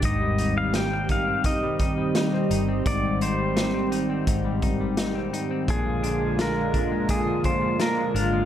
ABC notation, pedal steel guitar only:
X:1
M:4/4
L:1/16
Q:1/4=85
K:Ablyd
V:1 name="Pedal steel guitar"
e3 f g2 f2 e8 | d2 c4 z8 z2 | A4 B4 A2 c2 B2 F2 |]